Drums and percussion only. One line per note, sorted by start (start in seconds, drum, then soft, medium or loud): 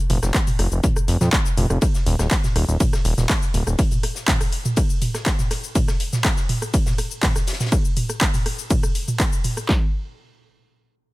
0.10 closed hi-hat medium
0.10 mid tom loud
0.10 open hi-hat loud
0.22 cross-stick medium
0.22 snare soft
0.22 shaker soft
0.34 kick loud
0.34 snare loud
0.34 clap loud
0.34 closed hi-hat medium
0.34 shaker medium
0.47 mid tom loud
0.47 open hi-hat medium
0.47 shaker soft
0.59 cross-stick medium
0.59 closed hi-hat medium
0.59 open hi-hat loud
0.72 shaker soft
0.84 kick loud
0.84 closed hi-hat medium
0.84 mid tom medium
0.84 shaker medium
0.96 cross-stick medium
0.96 shaker soft
1.08 closed hi-hat medium
1.08 open hi-hat loud
1.08 shaker soft
1.21 snare medium
1.21 mid tom medium
1.21 shaker soft
1.32 kick loud
1.32 cross-stick medium
1.32 snare loud
1.32 clap loud
1.32 closed hi-hat medium
1.32 shaker medium
1.45 snare soft
1.45 shaker medium
1.57 snare soft
1.57 closed hi-hat medium
1.57 mid tom medium
1.57 open hi-hat loud
1.57 shaker soft
1.70 cross-stick medium
1.70 shaker soft
1.81 kick loud
1.81 cross-stick medium
1.81 closed hi-hat medium
1.81 ride medium
1.81 shaker medium
1.95 snare soft
1.95 shaker soft
2.06 closed hi-hat medium
2.06 mid tom medium
2.06 open hi-hat loud
2.19 cross-stick medium
2.19 snare medium
2.19 shaker soft
2.31 kick loud
2.31 snare loud
2.31 clap loud
2.31 closed hi-hat medium
2.31 ride medium
2.31 shaker medium
2.44 snare medium
2.44 mid tom medium
2.44 shaker soft
2.56 cross-stick medium
2.56 closed hi-hat medium
2.56 open hi-hat loud
2.69 shaker soft
2.80 kick loud
2.80 closed hi-hat medium
2.80 mid tom loud
2.80 ride medium
2.80 shaker medium
2.93 cross-stick medium
2.93 snare medium
2.93 shaker soft
3.05 closed hi-hat medium
3.05 open hi-hat loud
3.05 shaker soft
3.18 snare medium
3.18 mid tom medium
3.18 shaker soft
3.29 kick loud
3.29 cross-stick medium
3.29 snare loud
3.29 clap loud
3.29 closed hi-hat medium
3.29 ride medium
3.29 shaker medium
3.42 snare soft
3.42 shaker soft
3.54 closed hi-hat medium
3.54 mid tom loud
3.54 open hi-hat loud
3.54 shaker soft
3.67 cross-stick medium
3.67 shaker soft
3.79 kick loud
3.79 closed hi-hat loud
3.79 ride medium
3.79 shaker medium
3.91 closed hi-hat soft
3.91 mid tom loud
3.91 shaker soft
4.03 cross-stick medium
4.03 closed hi-hat medium
4.03 open hi-hat loud
4.15 snare soft
4.15 shaker soft
4.28 kick loud
4.28 snare loud
4.28 clap loud
4.28 closed hi-hat medium
4.28 mid tom loud
4.28 ride medium
4.28 shaker medium
4.41 cross-stick medium
4.41 open hi-hat medium
4.41 shaker soft
4.52 closed hi-hat medium
4.52 open hi-hat loud
4.65 mid tom loud
4.65 shaker soft
4.76 kick loud
4.76 cross-stick medium
4.76 closed hi-hat medium
4.76 ride medium
4.76 shaker medium
4.90 shaker soft
5.02 closed hi-hat medium
5.02 mid tom medium
5.02 open hi-hat loud
5.02 shaker soft
5.14 cross-stick medium
5.14 snare medium
5.14 shaker soft
5.26 kick loud
5.26 snare loud
5.26 clap loud
5.26 closed hi-hat medium
5.26 ride medium
5.26 shaker medium
5.39 snare soft
5.39 mid tom loud
5.39 shaker soft
5.51 cross-stick medium
5.51 snare medium
5.51 closed hi-hat medium
5.51 open hi-hat loud
5.51 shaker soft
5.64 shaker soft
5.75 kick loud
5.75 closed hi-hat medium
5.75 mid tom medium
5.75 ride medium
5.75 shaker medium
5.88 cross-stick medium
5.88 snare medium
5.88 shaker soft
6.00 closed hi-hat medium
6.00 open hi-hat loud
6.13 snare medium
6.13 mid tom loud
6.13 shaker soft
6.24 kick loud
6.24 cross-stick medium
6.24 snare loud
6.24 clap loud
6.24 closed hi-hat medium
6.24 ride medium
6.24 shaker medium
6.37 snare medium
6.37 shaker soft
6.49 closed hi-hat medium
6.49 mid tom loud
6.49 open hi-hat loud
6.62 cross-stick medium
6.62 shaker soft
6.74 kick loud
6.74 closed hi-hat medium
6.74 ride medium
6.74 shaker medium
6.86 snare medium
6.86 mid tom loud
6.86 shaker soft
6.98 cross-stick soft
6.98 open hi-hat loud
6.98 shaker soft
7.11 shaker soft
7.22 kick loud
7.22 snare loud
7.22 clap loud
7.22 closed hi-hat medium
7.22 mid tom medium
7.22 open hi-hat medium
7.22 ride medium
7.22 shaker medium
7.36 cross-stick medium
7.36 snare soft
7.36 shaker medium
7.47 snare medium
7.47 closed hi-hat medium
7.47 open hi-hat loud
7.47 shaker soft
7.53 snare medium
7.53 closed hi-hat medium
7.60 snare medium
7.60 closed hi-hat medium
7.60 mid tom medium
7.60 shaker soft
7.66 snare medium
7.66 closed hi-hat medium
7.72 kick loud
7.72 cross-stick soft
7.72 ride medium
7.72 shaker medium
7.85 shaker soft
7.97 mid tom medium
7.97 open hi-hat loud
7.97 shaker soft
8.09 cross-stick medium
8.09 shaker soft
8.21 kick loud
8.21 clap loud
8.21 ride medium
8.21 shaker medium
8.34 mid tom medium
8.34 open hi-hat medium
8.34 shaker soft
8.46 cross-stick medium
8.46 open hi-hat loud
8.59 shaker soft
8.70 kick loud
8.70 mid tom medium
8.70 ride medium
8.70 shaker medium
8.83 cross-stick medium
8.83 shaker soft
8.95 open hi-hat loud
8.95 shaker soft
9.08 mid tom medium
9.08 shaker soft
9.20 kick loud
9.20 cross-stick medium
9.20 clap loud
9.20 ride medium
9.20 shaker medium
9.33 shaker medium
9.44 mid tom medium
9.44 open hi-hat loud
9.44 shaker soft
9.57 cross-stick soft
9.57 shaker soft
9.69 kick loud
9.69 snare loud
9.69 clap medium